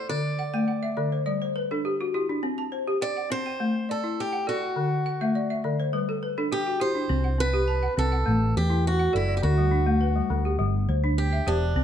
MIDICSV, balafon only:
0, 0, Header, 1, 2, 480
1, 0, Start_track
1, 0, Tempo, 583090
1, 81, Time_signature, 4, 2, 24, 8
1, 9745, End_track
2, 0, Start_track
2, 0, Title_t, "Balafon"
2, 0, Program_c, 0, 12
2, 0, Note_on_c, 0, 74, 54
2, 78, Note_on_c, 0, 50, 72
2, 206, Note_off_c, 0, 74, 0
2, 319, Note_on_c, 0, 78, 65
2, 320, Note_off_c, 0, 50, 0
2, 441, Note_on_c, 0, 79, 71
2, 442, Note_on_c, 0, 57, 73
2, 544, Note_off_c, 0, 78, 0
2, 558, Note_on_c, 0, 78, 57
2, 667, Note_off_c, 0, 79, 0
2, 680, Note_on_c, 0, 76, 63
2, 684, Note_off_c, 0, 57, 0
2, 783, Note_off_c, 0, 78, 0
2, 797, Note_on_c, 0, 50, 69
2, 797, Note_on_c, 0, 74, 60
2, 907, Note_off_c, 0, 76, 0
2, 925, Note_on_c, 0, 72, 57
2, 1023, Note_off_c, 0, 74, 0
2, 1036, Note_on_c, 0, 74, 61
2, 1038, Note_on_c, 0, 55, 71
2, 1040, Note_off_c, 0, 50, 0
2, 1149, Note_off_c, 0, 72, 0
2, 1166, Note_on_c, 0, 72, 62
2, 1263, Note_off_c, 0, 74, 0
2, 1280, Note_off_c, 0, 55, 0
2, 1281, Note_on_c, 0, 71, 65
2, 1390, Note_off_c, 0, 72, 0
2, 1408, Note_on_c, 0, 69, 58
2, 1411, Note_on_c, 0, 62, 61
2, 1505, Note_off_c, 0, 71, 0
2, 1523, Note_on_c, 0, 67, 65
2, 1631, Note_off_c, 0, 69, 0
2, 1650, Note_off_c, 0, 62, 0
2, 1651, Note_on_c, 0, 66, 64
2, 1746, Note_off_c, 0, 67, 0
2, 1764, Note_on_c, 0, 64, 56
2, 1765, Note_on_c, 0, 67, 65
2, 1873, Note_off_c, 0, 66, 0
2, 1889, Note_on_c, 0, 62, 63
2, 1987, Note_off_c, 0, 64, 0
2, 2000, Note_on_c, 0, 60, 83
2, 2004, Note_off_c, 0, 67, 0
2, 2112, Note_off_c, 0, 62, 0
2, 2124, Note_on_c, 0, 81, 62
2, 2239, Note_on_c, 0, 72, 60
2, 2242, Note_off_c, 0, 60, 0
2, 2367, Note_on_c, 0, 67, 76
2, 2481, Note_off_c, 0, 81, 0
2, 2482, Note_on_c, 0, 79, 57
2, 2606, Note_off_c, 0, 72, 0
2, 2608, Note_off_c, 0, 67, 0
2, 2608, Note_on_c, 0, 78, 61
2, 2718, Note_on_c, 0, 60, 69
2, 2838, Note_off_c, 0, 79, 0
2, 2848, Note_on_c, 0, 79, 59
2, 2961, Note_off_c, 0, 60, 0
2, 2963, Note_off_c, 0, 78, 0
2, 2964, Note_on_c, 0, 57, 67
2, 3088, Note_off_c, 0, 79, 0
2, 3203, Note_on_c, 0, 74, 60
2, 3204, Note_off_c, 0, 57, 0
2, 3323, Note_on_c, 0, 64, 71
2, 3561, Note_on_c, 0, 78, 61
2, 3566, Note_off_c, 0, 64, 0
2, 3568, Note_off_c, 0, 74, 0
2, 3680, Note_on_c, 0, 69, 60
2, 3681, Note_on_c, 0, 74, 54
2, 3920, Note_off_c, 0, 78, 0
2, 3920, Note_on_c, 0, 50, 80
2, 3922, Note_off_c, 0, 69, 0
2, 4047, Note_off_c, 0, 74, 0
2, 4162, Note_off_c, 0, 50, 0
2, 4165, Note_on_c, 0, 78, 64
2, 4289, Note_on_c, 0, 57, 72
2, 4290, Note_on_c, 0, 76, 68
2, 4387, Note_off_c, 0, 78, 0
2, 4407, Note_on_c, 0, 74, 57
2, 4512, Note_off_c, 0, 76, 0
2, 4529, Note_off_c, 0, 57, 0
2, 4530, Note_on_c, 0, 76, 62
2, 4628, Note_off_c, 0, 74, 0
2, 4644, Note_on_c, 0, 74, 57
2, 4647, Note_on_c, 0, 50, 68
2, 4753, Note_off_c, 0, 76, 0
2, 4771, Note_on_c, 0, 72, 63
2, 4867, Note_off_c, 0, 74, 0
2, 4882, Note_on_c, 0, 55, 64
2, 4882, Note_on_c, 0, 71, 58
2, 4885, Note_off_c, 0, 50, 0
2, 4993, Note_off_c, 0, 72, 0
2, 5012, Note_on_c, 0, 69, 57
2, 5106, Note_off_c, 0, 71, 0
2, 5122, Note_off_c, 0, 55, 0
2, 5126, Note_on_c, 0, 71, 55
2, 5233, Note_off_c, 0, 69, 0
2, 5249, Note_on_c, 0, 69, 63
2, 5250, Note_on_c, 0, 62, 67
2, 5348, Note_off_c, 0, 71, 0
2, 5365, Note_on_c, 0, 67, 61
2, 5471, Note_off_c, 0, 69, 0
2, 5487, Note_on_c, 0, 66, 56
2, 5489, Note_off_c, 0, 62, 0
2, 5587, Note_off_c, 0, 67, 0
2, 5597, Note_on_c, 0, 67, 65
2, 5601, Note_on_c, 0, 64, 59
2, 5710, Note_off_c, 0, 66, 0
2, 5723, Note_on_c, 0, 62, 55
2, 5825, Note_off_c, 0, 64, 0
2, 5839, Note_off_c, 0, 67, 0
2, 5839, Note_on_c, 0, 60, 83
2, 5948, Note_off_c, 0, 62, 0
2, 5961, Note_on_c, 0, 78, 59
2, 6069, Note_off_c, 0, 60, 0
2, 6078, Note_on_c, 0, 60, 59
2, 6203, Note_on_c, 0, 67, 75
2, 6319, Note_off_c, 0, 78, 0
2, 6319, Note_on_c, 0, 81, 59
2, 6443, Note_on_c, 0, 78, 65
2, 6445, Note_off_c, 0, 60, 0
2, 6445, Note_off_c, 0, 67, 0
2, 6562, Note_on_c, 0, 60, 72
2, 6674, Note_off_c, 0, 78, 0
2, 6684, Note_on_c, 0, 78, 60
2, 6685, Note_off_c, 0, 81, 0
2, 6798, Note_on_c, 0, 57, 75
2, 6802, Note_off_c, 0, 60, 0
2, 6925, Note_off_c, 0, 78, 0
2, 7039, Note_off_c, 0, 57, 0
2, 7161, Note_on_c, 0, 64, 69
2, 7403, Note_off_c, 0, 64, 0
2, 7405, Note_on_c, 0, 78, 62
2, 7517, Note_on_c, 0, 69, 67
2, 7517, Note_on_c, 0, 74, 60
2, 7635, Note_off_c, 0, 74, 0
2, 7645, Note_on_c, 0, 74, 55
2, 7758, Note_off_c, 0, 69, 0
2, 7758, Note_on_c, 0, 50, 81
2, 7759, Note_off_c, 0, 78, 0
2, 7884, Note_off_c, 0, 74, 0
2, 7884, Note_on_c, 0, 55, 60
2, 7996, Note_on_c, 0, 62, 63
2, 7999, Note_off_c, 0, 50, 0
2, 8121, Note_on_c, 0, 57, 72
2, 8238, Note_on_c, 0, 71, 58
2, 8239, Note_off_c, 0, 55, 0
2, 8362, Note_off_c, 0, 57, 0
2, 8362, Note_off_c, 0, 62, 0
2, 8362, Note_on_c, 0, 55, 61
2, 8481, Note_on_c, 0, 50, 70
2, 8603, Note_off_c, 0, 71, 0
2, 8604, Note_on_c, 0, 67, 55
2, 8708, Note_off_c, 0, 55, 0
2, 8718, Note_on_c, 0, 55, 76
2, 8719, Note_off_c, 0, 50, 0
2, 8843, Note_off_c, 0, 67, 0
2, 8958, Note_off_c, 0, 55, 0
2, 8963, Note_on_c, 0, 72, 61
2, 9085, Note_on_c, 0, 62, 70
2, 9324, Note_off_c, 0, 62, 0
2, 9324, Note_on_c, 0, 76, 59
2, 9325, Note_off_c, 0, 72, 0
2, 9440, Note_on_c, 0, 67, 69
2, 9442, Note_on_c, 0, 72, 64
2, 9678, Note_off_c, 0, 76, 0
2, 9679, Note_off_c, 0, 67, 0
2, 9682, Note_on_c, 0, 60, 82
2, 9745, Note_off_c, 0, 60, 0
2, 9745, Note_off_c, 0, 72, 0
2, 9745, End_track
0, 0, End_of_file